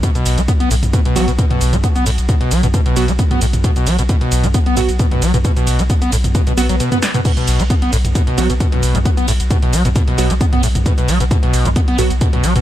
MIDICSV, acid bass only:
0, 0, Header, 1, 2, 480
1, 0, Start_track
1, 0, Tempo, 451128
1, 34, Time_signature, 4, 2, 24, 8
1, 13420, End_track
2, 0, Start_track
2, 0, Title_t, "Acid bass"
2, 0, Program_c, 0, 38
2, 33, Note_on_c, 0, 47, 100
2, 103, Note_off_c, 0, 47, 0
2, 160, Note_on_c, 0, 47, 77
2, 400, Note_on_c, 0, 59, 101
2, 416, Note_off_c, 0, 47, 0
2, 438, Note_off_c, 0, 59, 0
2, 513, Note_on_c, 0, 59, 109
2, 556, Note_off_c, 0, 59, 0
2, 640, Note_on_c, 0, 59, 105
2, 734, Note_off_c, 0, 59, 0
2, 754, Note_on_c, 0, 45, 78
2, 796, Note_off_c, 0, 45, 0
2, 995, Note_on_c, 0, 47, 100
2, 1064, Note_off_c, 0, 47, 0
2, 1121, Note_on_c, 0, 47, 76
2, 1235, Note_on_c, 0, 54, 84
2, 1251, Note_off_c, 0, 47, 0
2, 1339, Note_off_c, 0, 54, 0
2, 1361, Note_on_c, 0, 47, 102
2, 1398, Note_off_c, 0, 47, 0
2, 1474, Note_on_c, 0, 47, 99
2, 1544, Note_off_c, 0, 47, 0
2, 1601, Note_on_c, 0, 47, 78
2, 1840, Note_on_c, 0, 59, 101
2, 1856, Note_off_c, 0, 47, 0
2, 1878, Note_off_c, 0, 59, 0
2, 1954, Note_on_c, 0, 59, 99
2, 1996, Note_off_c, 0, 59, 0
2, 2080, Note_on_c, 0, 59, 103
2, 2174, Note_off_c, 0, 59, 0
2, 2194, Note_on_c, 0, 45, 77
2, 2236, Note_off_c, 0, 45, 0
2, 2434, Note_on_c, 0, 47, 104
2, 2504, Note_off_c, 0, 47, 0
2, 2562, Note_on_c, 0, 47, 80
2, 2675, Note_on_c, 0, 54, 81
2, 2691, Note_off_c, 0, 47, 0
2, 2779, Note_off_c, 0, 54, 0
2, 2803, Note_on_c, 0, 47, 99
2, 2839, Note_off_c, 0, 47, 0
2, 2915, Note_on_c, 0, 47, 102
2, 2984, Note_off_c, 0, 47, 0
2, 3042, Note_on_c, 0, 47, 76
2, 3282, Note_on_c, 0, 59, 103
2, 3298, Note_off_c, 0, 47, 0
2, 3319, Note_off_c, 0, 59, 0
2, 3395, Note_on_c, 0, 59, 99
2, 3436, Note_off_c, 0, 59, 0
2, 3522, Note_on_c, 0, 59, 108
2, 3615, Note_off_c, 0, 59, 0
2, 3637, Note_on_c, 0, 45, 82
2, 3677, Note_off_c, 0, 45, 0
2, 3876, Note_on_c, 0, 47, 100
2, 3945, Note_off_c, 0, 47, 0
2, 4003, Note_on_c, 0, 47, 81
2, 4116, Note_on_c, 0, 54, 72
2, 4132, Note_off_c, 0, 47, 0
2, 4220, Note_off_c, 0, 54, 0
2, 4243, Note_on_c, 0, 47, 100
2, 4279, Note_off_c, 0, 47, 0
2, 4356, Note_on_c, 0, 47, 102
2, 4425, Note_off_c, 0, 47, 0
2, 4482, Note_on_c, 0, 47, 78
2, 4722, Note_on_c, 0, 59, 101
2, 4738, Note_off_c, 0, 47, 0
2, 4759, Note_off_c, 0, 59, 0
2, 4836, Note_on_c, 0, 59, 102
2, 4877, Note_off_c, 0, 59, 0
2, 4963, Note_on_c, 0, 59, 99
2, 5055, Note_off_c, 0, 59, 0
2, 5077, Note_on_c, 0, 45, 80
2, 5117, Note_off_c, 0, 45, 0
2, 5315, Note_on_c, 0, 47, 101
2, 5384, Note_off_c, 0, 47, 0
2, 5443, Note_on_c, 0, 47, 81
2, 5556, Note_on_c, 0, 54, 81
2, 5572, Note_off_c, 0, 47, 0
2, 5660, Note_off_c, 0, 54, 0
2, 5682, Note_on_c, 0, 47, 109
2, 5719, Note_off_c, 0, 47, 0
2, 5796, Note_on_c, 0, 47, 101
2, 5864, Note_off_c, 0, 47, 0
2, 5922, Note_on_c, 0, 47, 79
2, 6162, Note_on_c, 0, 59, 97
2, 6178, Note_off_c, 0, 47, 0
2, 6199, Note_off_c, 0, 59, 0
2, 6276, Note_on_c, 0, 59, 107
2, 6317, Note_off_c, 0, 59, 0
2, 6403, Note_on_c, 0, 59, 99
2, 6495, Note_off_c, 0, 59, 0
2, 6516, Note_on_c, 0, 45, 75
2, 6557, Note_off_c, 0, 45, 0
2, 6756, Note_on_c, 0, 47, 100
2, 6824, Note_off_c, 0, 47, 0
2, 6882, Note_on_c, 0, 47, 74
2, 6944, Note_off_c, 0, 47, 0
2, 6996, Note_on_c, 0, 59, 82
2, 7037, Note_off_c, 0, 59, 0
2, 7122, Note_on_c, 0, 54, 80
2, 7183, Note_off_c, 0, 54, 0
2, 7235, Note_on_c, 0, 47, 83
2, 7339, Note_off_c, 0, 47, 0
2, 7362, Note_on_c, 0, 59, 104
2, 7424, Note_off_c, 0, 59, 0
2, 7601, Note_on_c, 0, 47, 110
2, 7663, Note_off_c, 0, 47, 0
2, 7715, Note_on_c, 0, 47, 104
2, 7784, Note_off_c, 0, 47, 0
2, 7842, Note_on_c, 0, 47, 80
2, 8081, Note_on_c, 0, 59, 102
2, 8097, Note_off_c, 0, 47, 0
2, 8118, Note_off_c, 0, 59, 0
2, 8195, Note_on_c, 0, 59, 103
2, 8236, Note_off_c, 0, 59, 0
2, 8322, Note_on_c, 0, 59, 106
2, 8415, Note_off_c, 0, 59, 0
2, 8435, Note_on_c, 0, 45, 75
2, 8476, Note_off_c, 0, 45, 0
2, 8674, Note_on_c, 0, 47, 101
2, 8744, Note_off_c, 0, 47, 0
2, 8800, Note_on_c, 0, 47, 74
2, 8914, Note_on_c, 0, 54, 82
2, 8930, Note_off_c, 0, 47, 0
2, 9018, Note_off_c, 0, 54, 0
2, 9040, Note_on_c, 0, 47, 108
2, 9078, Note_off_c, 0, 47, 0
2, 9153, Note_on_c, 0, 47, 97
2, 9223, Note_off_c, 0, 47, 0
2, 9281, Note_on_c, 0, 47, 83
2, 9521, Note_on_c, 0, 59, 108
2, 9537, Note_off_c, 0, 47, 0
2, 9558, Note_off_c, 0, 59, 0
2, 9634, Note_on_c, 0, 59, 102
2, 9676, Note_off_c, 0, 59, 0
2, 9760, Note_on_c, 0, 59, 102
2, 9854, Note_off_c, 0, 59, 0
2, 9875, Note_on_c, 0, 45, 72
2, 9916, Note_off_c, 0, 45, 0
2, 10114, Note_on_c, 0, 47, 106
2, 10184, Note_off_c, 0, 47, 0
2, 10242, Note_on_c, 0, 47, 79
2, 10354, Note_on_c, 0, 54, 76
2, 10370, Note_off_c, 0, 47, 0
2, 10458, Note_off_c, 0, 54, 0
2, 10482, Note_on_c, 0, 47, 98
2, 10518, Note_off_c, 0, 47, 0
2, 10594, Note_on_c, 0, 47, 100
2, 10664, Note_off_c, 0, 47, 0
2, 10720, Note_on_c, 0, 47, 78
2, 10960, Note_on_c, 0, 59, 107
2, 10975, Note_off_c, 0, 47, 0
2, 10997, Note_off_c, 0, 59, 0
2, 11073, Note_on_c, 0, 59, 105
2, 11115, Note_off_c, 0, 59, 0
2, 11199, Note_on_c, 0, 59, 105
2, 11294, Note_off_c, 0, 59, 0
2, 11314, Note_on_c, 0, 45, 79
2, 11356, Note_off_c, 0, 45, 0
2, 11553, Note_on_c, 0, 47, 103
2, 11623, Note_off_c, 0, 47, 0
2, 11680, Note_on_c, 0, 47, 77
2, 11793, Note_on_c, 0, 54, 72
2, 11809, Note_off_c, 0, 47, 0
2, 11898, Note_off_c, 0, 54, 0
2, 11920, Note_on_c, 0, 47, 102
2, 11957, Note_off_c, 0, 47, 0
2, 12032, Note_on_c, 0, 47, 104
2, 12103, Note_off_c, 0, 47, 0
2, 12159, Note_on_c, 0, 47, 76
2, 12400, Note_on_c, 0, 59, 101
2, 12416, Note_off_c, 0, 47, 0
2, 12438, Note_off_c, 0, 59, 0
2, 12512, Note_on_c, 0, 59, 101
2, 12555, Note_off_c, 0, 59, 0
2, 12640, Note_on_c, 0, 59, 101
2, 12734, Note_off_c, 0, 59, 0
2, 12752, Note_on_c, 0, 45, 80
2, 12795, Note_off_c, 0, 45, 0
2, 12993, Note_on_c, 0, 47, 100
2, 13063, Note_off_c, 0, 47, 0
2, 13120, Note_on_c, 0, 47, 80
2, 13233, Note_on_c, 0, 54, 80
2, 13249, Note_off_c, 0, 47, 0
2, 13338, Note_off_c, 0, 54, 0
2, 13360, Note_on_c, 0, 47, 105
2, 13398, Note_off_c, 0, 47, 0
2, 13420, End_track
0, 0, End_of_file